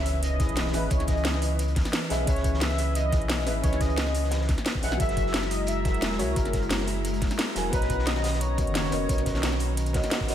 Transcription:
Already playing: C#2 E3 C#4 G#4 B4 C#5 E5, sub drop
0.06 closed hi-hat, open hi-hat
0.22 D#5, closed hi-hat
0.38 C#4 E4 G#4 B4 D#5, kick, snare, closed hi-hat
0.49 B1, closed hi-hat
0.56 snare, closed hi-hat
0.66 snare
0.72 G#1 C#4 G#4 B4 D#5 E5, snare, closed hi-hat, open hi-hat
0.88 C#2 C#4 G#4 B4 C#5 D#5, kick, closed hi-hat
0.93 E4
1.00 snare, closed hi-hat
1.07 D#5, kick, snare, closed hi-hat
1.17 closed hi-hat
1.25 snare, closed hi-hat
1.34 snare
1.42 closed hi-hat, open hi-hat
1.59 closed hi-hat
1.68 closed hi-hat
1.76 kick, snare, closed hi-hat, open hi-hat
1.85 snare, closed hi-hat
1.93 snare, closed hi-hat
2.02 snare
2.09 B1 C#4 G#4 B4 D#5 E5, snare, closed hi-hat, open hi-hat
2.25 C#2 C#4 G#4 B4 C#5, kick, closed hi-hat
2.30 E5
2.36 snare, closed hi-hat
2.44 kick, closed hi-hat
2.54 snare
2.61 E5, snare, closed hi-hat
2.71 snare
2.78 closed hi-hat, open hi-hat
2.95 D#5, closed hi-hat
3.11 C#4 E4 G#4 B4, kick, snare, closed hi-hat
3.21 B1, closed hi-hat
3.29 snare, closed hi-hat
3.38 snare
3.45 G#1 C#4 G#4 B4 D#5 E5, snare, closed hi-hat, open hi-hat
3.61 C#2 C#4 G#4 B4 C#5 D#5, kick, closed hi-hat
3.66 E4
3.73 snare, closed hi-hat
3.81 D#5, kick, snare, closed hi-hat
3.90 closed hi-hat
3.98 snare, closed hi-hat
4.07 snare
4.15 closed hi-hat, open hi-hat
4.24 snare
4.31 snare, closed hi-hat
4.41 snare
4.49 kick, snare, closed hi-hat
4.58 snare, closed hi-hat
4.66 snare, closed hi-hat
4.74 kick, snare
4.81 B1 C#4 G#4 B4 D#5 E5 F#5, snare, closed hi-hat, open hi-hat
4.92 snare
4.97 F#1 F#3 G#3 E4 F#4 G#4 A#4 E5 A#5, kick, closed hi-hat
5.02 E5
5.09 snare, closed hi-hat
5.17 kick, closed hi-hat
5.26 snare
5.34 snare, closed hi-hat
5.42 snare
5.51 D#5, closed hi-hat, open hi-hat
5.67 E5, closed hi-hat
5.84 F#3 F#4 G#4 A#4 E5, kick, snare, closed hi-hat
5.94 E1, closed hi-hat
6.02 snare, closed hi-hat
6.11 snare
6.18 C#2 F#3 F#4 G#4 A#4 C#5 E5, snare, closed hi-hat, open hi-hat
6.34 F#1 F#3 F#4 G#4 A#4, kick, closed hi-hat
6.39 E5
6.45 snare, closed hi-hat
6.53 kick, snare, closed hi-hat
6.62 closed hi-hat
6.70 snare, closed hi-hat
6.80 snare
6.87 closed hi-hat, open hi-hat
7.05 closed hi-hat
7.14 closed hi-hat
7.21 kick, snare, closed hi-hat, open hi-hat
7.31 snare, closed hi-hat
7.38 snare, closed hi-hat
7.47 snare
7.55 E1 F#3 F#4 G#4 A#4 G#5, snare, closed hi-hat, open hi-hat
7.70 B1 D#3 B3 C#4 F#4 B4 C#5 A#5, kick, closed hi-hat
7.75 D#5
7.82 snare, closed hi-hat
7.90 kick, closed hi-hat
7.99 snare
8.07 D#5, snare, closed hi-hat
8.16 snare
8.24 snare, closed hi-hat, open hi-hat
8.33 snare
8.41 C#5, closed hi-hat
8.57 B3 F#4 A#4 C#5 D#5, kick, closed hi-hat
8.67 F#1, closed hi-hat
8.75 snare, closed hi-hat
8.84 snare
8.91 F#1 B3 F#4 A#4 C#5 D#5, snare, closed hi-hat, open hi-hat
9.06 B1 B3 F#4 A#4 C#5, kick, closed hi-hat
9.11 D#5
9.18 snare, closed hi-hat
9.25 kick, snare, closed hi-hat
9.35 snare, closed hi-hat
9.43 snare, closed hi-hat
9.52 snare
9.59 closed hi-hat, open hi-hat
9.77 closed hi-hat
9.86 closed hi-hat
9.93 B3 F#4 A#4 C#5 D#5, kick, snare, closed hi-hat, open hi-hat
10.04 snare, closed hi-hat
10.11 snare, closed hi-hat
10.21 kick, snare
10.27 F#1 B3 F#4 A#4 C#5 D#5, snare, closed hi-hat, open hi-hat

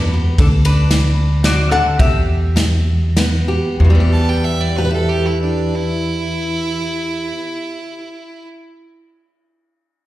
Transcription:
Already playing: E2 E3 B3
0.13 G4
0.38 D2 D3 D4 A4, kick, ride
0.65 D4 B4, ride
0.91 A3, snare, ride
1.44 C3 F#4 D5, snare, ride
1.71 D3 A4 F#5
1.99 E2 G4 E5, kick, ride
2.56 E3, snare, ride
3.17 E3 B3, snare, ride
3.48 G4
3.80 E2
3.85 E3
3.90 G3
3.95 B3
4.00 G4
4.13 A5
4.29 G5
4.45 E5
4.61 D5
4.77 G4 B4
4.85 B4
4.91 A4 E5
5.09 G4
5.26 E4
5.42 D4
5.75 E4

